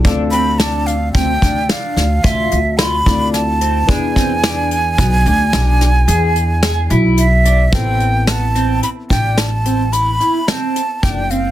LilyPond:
<<
  \new Staff \with { instrumentName = "Flute" } { \time 7/4 \key a \minor \tempo 4 = 109 r8 b''8 a''8 f''8 g''4 f''4 e''4 b''4 a''4 | gis''1. e''4 | g''4 a''4 b''8 g''8 a''4 b''4 a''4 g''8 f''8 | }
  \new Staff \with { instrumentName = "Grand piano" } { \time 7/4 \key a \minor <c' d' f' a'>1~ <c' d' f' a'>4. <c' e' f' a'>4. | <b d' e' gis'>1.~ <b d' e' gis'>4 | <b c' e' a'>1.~ <b c' e' a'>4 | }
  \new Staff \with { instrumentName = "Clean electric guitar" } { \time 7/4 \key a \minor d'8 c'8 d'4 c'8 d'8 d'4 f'4 f'8 d'4 c'8 | d'8 c'8 d'4 b8 d'8 d'4 gis'4 gis'8 e'4 d'8 | c'4 b8 c'4 d'4 c'8 e'8 e'8 c'4 d'8 c'8 | }
  \new Staff \with { instrumentName = "Upright bass" } { \clef bass \time 7/4 \key a \minor d,2 d,8 d,8 r8 d,8 d,8 d,4 d,4. | e,2 b,,8 d,8 b,,4 e,4. b,,4. | a,,2 r8 a,,2 r4. fis,,4 | }
  \new DrumStaff \with { instrumentName = "Drums" } \drummode { \time 7/4 <hh bd>8 hh8 <hh sn>8 hh8 <hh bd>8 <hh bd>8 <hh sn>8 <hh sn>8 <hh bd>8 hh8 <hh sn>8 <hh bd>8 <hh sn>8 hh8 | <hh bd>8 <hh bd>8 <hh sn>8 hh8 <hh bd>8 hh8 <hh sn>8 <hh sn>8 hh8 hh8 <hh sn>8 hh8 hh8 hh8 | <hh bd>8 hh8 <hh sn>8 hh8 hh8 <hh bd>8 <hh sn>8 hh8 hh8 hh8 <hh sn>8 hh8 <hh bd>8 hh8 | }
>>